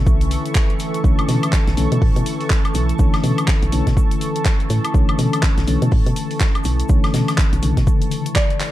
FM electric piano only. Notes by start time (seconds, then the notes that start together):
Already playing: D3 E3 A3 C#4
1.03 D3 E3 A3 C#4
1.77 D3 E3 A3 C#4
2.99 D3 E3 A3 C#4
3.72 D3 E3 A3 C#4
4.94 D3 E3 A3 C#4
5.67 D3 E3 A3 C#4
6.89 D3 E3 A3 C#4
7.62 C#3 D3 E3 A3